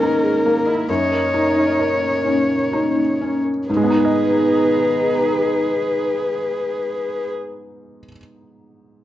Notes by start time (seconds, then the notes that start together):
Already playing: G#2 G#3 A#3 C#4 D#4 G#4 A#4
0.01 D#4 B4
0.23 G#4
0.46 A#3
0.67 E4 D#5
0.88 F#2 A#3 C#4 D#4 C#5
1.12 C#5
1.34 D#4 A#4
1.56 D#4
1.79 A#4
2.01 A#4
2.24 C#4 D#4
2.48 C#5
2.71 D#4 F#4
2.95 D#4
3.21 C#4
3.44 A#4
3.68 G#2 B3 D#4 G#4 B4 A#5
3.77 G#3
3.84 B3
3.90 D#4
3.97 B4
4.05 D#5